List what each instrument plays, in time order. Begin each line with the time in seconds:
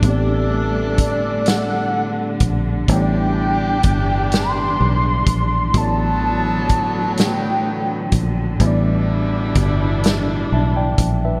Already playing: string section D4
0.00 fingered electric bass A1, tine electric piano A2 A3 B3, string section D3 G3 A3, horn section E3 D4 A4, kick, closed hi-hat
0.06 tine electric piano C4 G4
0.10 tine electric piano D5
0.98 fingered electric bass G1, soft synth lead D5, kick, closed hi-hat
1.46 soft synth lead F#5, snare, closed hi-hat
2.40 fingered electric bass A#1, kick, closed hi-hat
2.85 tine electric piano A2 G3, string section E3 G3 D4, horn section E3 D4 G4, kick, closed hi-hat
2.89 fingered electric bass A1, tine electric piano B3 E4, soft synth lead G5
2.95 tine electric piano C#5
3.02 tine electric piano D5
3.83 fingered electric bass G1, kick, closed hi-hat
4.32 soft synth lead C6, snare, closed hi-hat
4.80 fingered electric bass B1
5.26 fingered electric bass A#1, kick, closed hi-hat
5.71 tine electric piano A2 F#3, string section D3 F#3 A3, horn section D3 F#3 B3, kick, closed hi-hat
5.75 fingered electric bass A1, tine electric piano B3 E4, soft synth lead A5
5.81 tine electric piano D5
6.69 fingered electric bass G1, kick, closed hi-hat
7.13 soft synth lead F#5
7.17 soft synth lead G5, snare, closed hi-hat
8.12 fingered electric bass A#1, kick, closed hi-hat
8.56 tine electric piano A2 G3, horn section B2 G3 E4, string section E3 D4, kick, closed hi-hat
8.61 fingered electric bass A1, tine electric piano B3 E4
8.67 tine electric piano D5
9.55 fingered electric bass G1, kick, closed hi-hat
10.04 snare, closed hi-hat
10.52 fingered electric bass B1, tine electric piano E5 A5
10.76 tine electric piano D5 G5
10.98 fingered electric bass A#1, kick, closed hi-hat
11.25 tine electric piano B4 E5